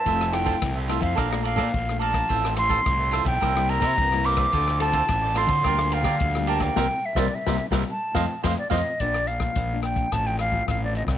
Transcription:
<<
  \new Staff \with { instrumentName = "Flute" } { \time 4/4 \key f \major \tempo 4 = 107 a''8 g''8. r8 f''8. f''4 a''8~ | a''8 c'''4~ c'''16 g''8. bes''4 d'''8~ | d'''8 a''4 c'''4 f''4 a''16 g''16~ | g''8 e''16 d''16 e''8. r16 a''4 f''16 d''16 ees''8 |
\key bes \major d''8 f''4 g''8 a''16 g''16 f''8 f''16 d''16 ees''8 | }
  \new Staff \with { instrumentName = "Cavaquinho" } { \time 4/4 \key f \major <f' a' c'' e''>8 <f' a' c'' e''>16 <f' a' c'' e''>16 r16 <a' c'' e''>16 <f' a' c'' e''>16 <a' c'' e''>16 <a' d'' f'' bes''>16 <d'' f'' bes''>16 <a' d'' f'' bes''>16 <a' d'' f'' bes''>16 r8 <a' d'' f'' bes''>16 <d'' f'' bes''>16 | <f' a' c'' e''>8 <f' a' c'' e''>16 <f' a' c'' e''>16 r16 <a' c'' e''>16 <f' a' c'' e''>16 e''16 <e' bes' c'' e''>16 <bes' c'' e''>16 <e' bes' c'' e''>16 <e' bes' c'' e''>16 r8 <e' bes' c'' e''>16 <bes' c'' e''>16 | <f' a' c'' d''>8 <f' a' c'' d''>16 <f' a' c'' d''>16 r16 <a' c'' d''>16 <f' a' c'' d''>16 <a' c'' d''>16 <g' bes' d'' f''>16 <bes' d'' f''>16 <g' bes' d'' f''>16 <g' bes' d'' f''>16 r8 <g' bes' d'' f''>16 <bes' d'' f''>16 | <bes' c'' e''>16 r8 <bes' c'' e''>16 r16 <bes' c'' e''>16 r16 <bes' c'' e''>16 r8 <c'' ees'' f''>16 r16 <c'' ees'' f''>16 r16 <c'' ees'' f''>16 r16 |
\key bes \major r1 | }
  \new Staff \with { instrumentName = "Nylon-string guitar" } { \time 4/4 \key f \major << { <a c' e'>8 <a c' e'>8. r16 <a c' e'>8 <a d' f'>16 <a d' f'>4 <a d' f'>8. | <f c' e'>8 <f c' e'>8. r16 <f c' e'>8 <g bes e'>16 <g bes e'>4 <g bes e'>8. | <c' f' a'>8 <c' f' a'>8. r16 <c' f' a'>8 <g bes f'>16 <g bes f'>4 <g bes f'>8. | <g bes c'>16 r8 <g bes c'>16 r16 <g bes c'>16 r16 <g bes c'>16 r8 <f a c'>16 r16 <f a c'>16 r16 <f a c'>16 r16 |
\key bes \major <f bes d'>8 r16 <f bes d'>8 <f bes d'>8. <f c' f'>8. <f c' f'>8 <f c' f'>8. | } \\ { f4 c4 bes,4 f4 | a,4 a,4 c4 g,4 | d4 a,4 d4 d4 | r1 |
bes,4 f4 a,4 a,4 | } >> }
  \new Staff \with { instrumentName = "Fingered electric bass" } { \clef bass \time 4/4 \key f \major f,,4 c,8. f,16 bes,,8. bes,16 bes,,4 | a,,4 c,8. b,,16 c,8. c16 c,4 | d,4 a,,8. d16 d,8. d16 d,4 | c,16 r8 c,16 r16 c,16 r16 c,16 r8 f,16 r16 f,16 r16 f,16 r16 |
\key bes \major bes,,4 bes,,4 a,,4 a,,8. c,16 | }
  \new DrumStaff \with { instrumentName = "Drums" } \drummode { \time 4/4 <bd cymr>16 ss16 <cymr ss>16 <bd cymr>16 <bd cymr ss>8 <cymr ss>16 <bd cymr>16 <bd cymr ss>16 ss16 cymr16 <bd cymr ss>16 <bd cymr>16 ss16 cymr16 <bd cymr ss>16 | <bd cymr>16 ss16 <cymr ss>16 <bd cymr>16 <bd cymr ss>8 <cymr ss>16 <bd cymr>16 <bd cymr ss>16 ss16 cymr16 <bd cymr ss>16 <bd cymr>16 ss16 cymr16 <bd cymr ss>16 | <bd cymr>16 ss16 <cymr ss>16 <bd cymr>16 <bd cymr ss>8 <cymr ss>16 <bd cymr>16 <bd cymr ss>16 ss16 cymr16 <bd cymr ss>16 <bd cymr>16 ss16 cymr16 <bd cymr ss>16 | <bd sn>8. <bd sn>16 r16 <bd sn>8 <bd sn>16 r8 <bd sn>8 <bd sn>8 <bd sn>8 |
<hh bd>16 ss16 hh16 <bd ss>16 <hh bd>8 <hh ss>16 <hh bd>16 <hh bd ss>16 hh16 <hh ss>16 bd16 <hh bd ss>8 hh16 <bd ss>16 | }
>>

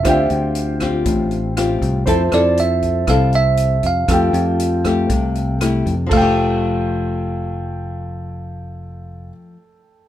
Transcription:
<<
  \new Staff \with { instrumentName = "Grand piano" } { \time 4/4 \key f \major \tempo 4 = 119 <f' c'' e'' g''>1 | <c'' e'' a''>1 | <a' g'' e'''>1 | <a' g'' e'''>1~ |
<a' g'' e'''>1 | }
  \new Staff \with { instrumentName = "Tine electric piano" } { \time 4/4 \key f \major e''8 r2. r8 | c''8 d''8 e''4 f''8 e''4 f''8~ | f''2. r4 | f''1~ |
f''1 | }
  \new Staff \with { instrumentName = "Nylon-string guitar" } { \time 4/4 \key f \major << { <c' f' g'>4. <c' f' g'>4. <c' f' g'>4 | <c' e' a'>8 <c' e' a'>4. <c' e' a'>4. r8 | <a g'>4. <a g'>4. <a e' g'>8 r8 | <f a g'>1~ |
<f a g'>1 | } \\ { d2 a,2 | f2 c2 | f2 c2 | r1 |
r1 | } >> }
  \new Staff \with { instrumentName = "Fingered electric bass" } { \clef bass \time 4/4 \key f \major d,8 d,4. a,,4. c,8 | f,8 f,4. c,4. f,8 | f,8 f,4. c,4. f,8 | f,,1~ |
f,,1 | }
  \new DrumStaff \with { instrumentName = "Drums" } \drummode { \time 4/4 <hh bd ss>8 hh8 hh8 <hh bd ss>8 <hh bd>8 hh8 <hh ss>8 <hh bd>8 | <hh bd>8 <hh ss>8 hh8 <hh bd>8 <hh bd ss>8 hh8 hh8 <hh bd>8 | <hh bd ss>8 hh8 hh8 <hh bd ss>8 <hh bd>8 hh8 <hh ss>8 <hh bd>8 | <cymc bd>4 r4 r4 r4 |
r4 r4 r4 r4 | }
>>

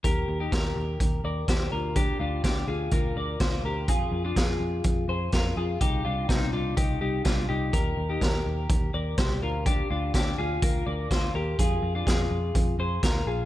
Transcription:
<<
  \new Staff \with { instrumentName = "Clean electric guitar" } { \time 4/4 \key ees \major \tempo 4 = 125 <g' bes'>8. <ees' g'>16 <g' bes'>4. <bes' d''>8 <g' c''>8 <f' bes'>8 | <d' g'>8 <d' f'>8 <d' g'>8 <f' aes'>8 <f' bes'>8 <bes' d''>8 <f' c''>8 <g' bes'>8 | <f' aes'>8. <d' f'>16 <f' aes'>4. <aes' c''>8 <f' bes'>8 <f' aes'>8 | <ees' g'>8 <d' f'>8 <c' ees'>8 <d' f'>8 <ees' g'>8 <ees' g'>8 <d' f'>8 <ees' g'>8 |
<g' bes'>8. <ees' g'>16 <g' bes'>4. <bes' d''>8 <g' c''>8 <f' bes'>8 | <d' g'>8 <d' f'>8 <d' g'>8 <f' aes'>8 <f' bes'>8 <bes' d''>8 <f' c''>8 <g' bes'>8 | <f' aes'>8. <d' f'>16 <f' aes'>4. <aes' c''>8 <f' bes'>8 <f' aes'>8 | }
  \new Staff \with { instrumentName = "Picked electric bass" } { \clef bass \time 4/4 \key ees \major ees,8 ees,8 ees,8 ees,8 ees,8 ees,8 ees,8 d,8~ | d,8 d,8 d,8 d,8 d,8 d,8 d,8 d,8 | f,8 f,8 f,8 f,8 f,8 f,8 f,8 f,8 | c,8 c,8 c,8 c,8 c,8 c,8 c,8 c,8 |
ees,8 ees,8 ees,8 ees,8 ees,8 ees,8 c,8 d,8~ | d,8 d,8 d,8 d,8 d,8 d,8 d,8 ees,8 | f,8 f,8 f,8 f,8 f,8 f,8 d,8 bes,,8 | }
  \new DrumStaff \with { instrumentName = "Drums" } \drummode { \time 4/4 <hh bd>4 <hh bd sn>4 <hh bd>4 <hh bd sn>4 | <hh bd>4 <hh bd sn>4 <hh bd>4 <hh bd sn>4 | <hh bd>4 <hh bd sn>4 <hh bd>4 <hh bd sn>4 | <hh bd>4 <hh bd sn>4 <hh bd>4 <hh bd sn>4 |
<hh bd>4 <hh bd sn>4 <hh bd>4 <hh bd sn>4 | <hh bd>4 <hh bd sn>4 <hh bd>4 <hh bd sn>4 | <hh bd>4 <hh bd sn>4 <hh bd>4 <hh bd sn>4 | }
>>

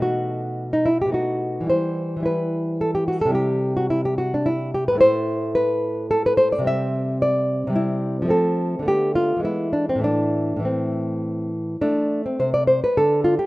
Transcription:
\new Staff \with { instrumentName = "Nylon-string guitar" } { \time 3/4 \key c \lydian \tempo 4 = 108 << { fis'4~ fis'16 dis'16 e'16 g'16 fis'4 | c''4 b'4 a'16 g'16 fis'16 a'16 | g'8. fis'16 e'16 g'16 fis'16 d'16 e'8 g'16 b'16 | \key a \minor c''4 b'4 a'16 b'16 c''16 d''16 |
e''4 d''4 e'4 | a'4 g'8 f'8 e'8 d'16 c'16 | d'4 c'4. r8 | d'8. c'16 c''16 d''16 c''16 b'16 a'8 f'16 g'16 | } \\ { <b, a dis'>2 <b, a dis'>4 | <e g e'>4 <e g e'>2 | <c g e'>2. | <a, a e'>2. |
<c g c'>2 <c g c'>4 | <f a c'>4 <d a b>4 <e gis b>4 | <a, e a>4 <a, e a>2 | a4 c4 d4 | } >> }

